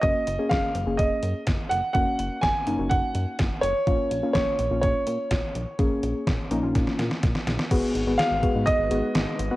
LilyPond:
<<
  \new Staff \with { instrumentName = "Grand piano" } { \time 4/4 \key fis \major \tempo 4 = 125 dis''4 eis''4 dis''4 r8 fis''8 | fis''4 gis''4 fis''4 r8 cis''8~ | cis''4 cis''4 cis''2~ | cis''2. r4 |
r4 eis''4 dis''2 | }
  \new Staff \with { instrumentName = "Analog synth pad" } { \time 4/4 \key fis \major r1 | r1 | r1 | r1 |
<gis dis' fis' b'>1 | }
  \new Staff \with { instrumentName = "Synth pluck" } { \time 4/4 \key fis \major <ais cis' fis'>8 r16 <ais cis' gis'>8 r8 <ais cis' gis'>4~ <ais cis' gis'>16 r4 | <ais cis' fis'>8. r8. <ais cis' dis'>16 <ais cis' fis'>4~ <ais cis' fis'>16 r4 | <ais cis' eis'>8 r16 <ais cis' eis'>8 r8 <ais cis' eis'>4~ <ais cis' eis'>16 r4 | <ais cis' gis'>8. r8. <ais cis' dis'>16 <ais cis' eis'>4~ <ais cis' eis'>16 r4 |
<b fis' gis'>8 r16 <b fis' gis'>8 r16 <b fis' gis'>8 r8 <b fis' gis'>8. r8 <b fis' b'>16 | }
  \new Staff \with { instrumentName = "Analog synth bass" } { \clef bass \time 4/4 \key fis \major fis,,16 r16 fis,,16 r16 fis,,16 r16 fis,,16 fis,,16 fis,,16 r16 fis,16 r16 fis,,16 r16 fis,,16 r16 | fis,,16 r16 fis,,16 r16 fis,,16 r16 fis,,16 fis,,16 fis,,16 r16 fis,16 r16 fis,,16 r16 fis,,16 r16 | ais,,16 r16 ais,,16 r16 ais,,16 r16 ais,,16 ais,,16 ais,,16 r16 ais,16 r16 ais,,16 r16 ais,,16 r16 | ais,,16 r16 ais,,16 r16 ais,,16 r16 ais,,16 ais,,16 ais,,16 r16 ais,16 r16 ais,,16 r16 ais,,16 r16 |
gis,,16 r16 gis,,16 gis,,16 r16 gis,,16 r16 gis,16 r16 gis,,16 gis,,16 r16 gis,,16 r16 gis,,16 r16 | }
  \new DrumStaff \with { instrumentName = "Drums" } \drummode { \time 4/4 <hh bd>8 hh8 <hh bd sn>8 hh8 <hh bd>8 hh8 <hh bd sn>8 hh8 | <hh bd>8 hh8 <hh bd sn>8 hh8 <hh bd>8 hh8 <hh bd sn>8 hh8 | <hh bd>8 hh8 <hh bd sn>8 hh8 <hh bd>8 hh8 <hh bd sn>8 hh8 | <hh bd>8 hh8 <hh bd sn>8 hh8 <hh bd sn>16 sn16 <hh sn>16 sn16 <hh bd sn>16 sn16 <hh sn>16 sn16 |
<cymc hh bd>8 hh8 <hh sn>8 <hh bd>8 <hh bd>8 hh8 <hh sn>8 hh8 | }
>>